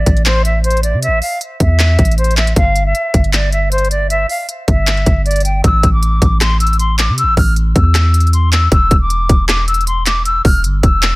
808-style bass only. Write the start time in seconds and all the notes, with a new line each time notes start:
0.06 A1
0.93 C3
1.08 A1
1.60 E2
1.99 A1
2.56 G1
3.14 G1
4.68 G1
5.06 G1
5.64 A1
5.83 A1
6.22 A1
7.09 C3
7.23 A1
7.37 A1
7.76 E2
8.72 E1
8.91 E1
9.29 E1
10.45 E1
10.64 G1
10.83 E1